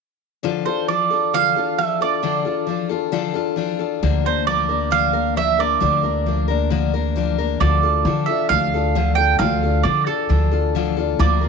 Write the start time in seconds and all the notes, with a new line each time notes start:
0.43 D3 F3 D4 F4 A4
0.66 D4 F4 A4 C5
0.88 F3 D4 F4 A4 D5
1.10 D4 F4 A4
1.33 D3 F3 D4 F4 A4 F5
1.56 D4 F4 A4
1.78 F3 D4 F4 A4 E5
2.01 D4 F4 A4 D5
2.23 D3 F3 D4 F4 A4
2.45 D4 F4 A4
2.67 F3 D4 F4 A4
2.89 D4 F4 A4
3.12 D3 F3 D4 F4 A4
3.34 D4 F4 A4
3.56 F3 D4 F4 A4
3.79 D4 F4 A4
4.03 D2 D3 F3 A#3 D4 A#4
4.25 A#3 D4 A#4 C5
4.47 F3 A#3 D4 A#4 D5
4.69 A#3 D4 A#4
4.91 D3 F3 A#3 D4 A#4 F5
5.13 A#3 D4 A#4
5.36 F3 A#3 D4 A#4 E5
5.59 A#3 D4 A#4 D5
5.80 D2 D3 F3 A#3 D4 A#4
6.03 A#3 D4 A#4
6.26 F3 A#3 D4 A#4
6.48 A#3 D4 A#4
6.70 D3 F3 A#3 D4 A#4
6.94 A#3 D4 A#4
7.16 F3 A#3 D4 A#4
7.38 A#3 D4 A#4
7.60 D2 D3 F3 D4 F4 A4 D5
7.83 D4 F4 A4
8.05 D3 F3 D4 F4 A4
8.26 F4 A4 E5
8.31 D4
8.49 D2 F3 D4 F4 A4 F5
8.74 D4 F4 A4
8.95 D3 F3 D4 F4 A4
9.15 A4 G5
9.20 D4 F4
9.39 D2 D3 F3 D4 F4 A4 F5
9.63 D4 F4 A4
9.83 D3 F3 D4 F4 A4 D5
10.06 D4 F4 A4
10.29 D2 F3 D4 F4 A4
10.51 D4 F4 A4
10.75 D3 F3 D4 F4 A4
10.97 D4 F4 A4
11.19 D2 D3 F3 A#3 F4 A#4 D5
11.41 A#3 F4 A#4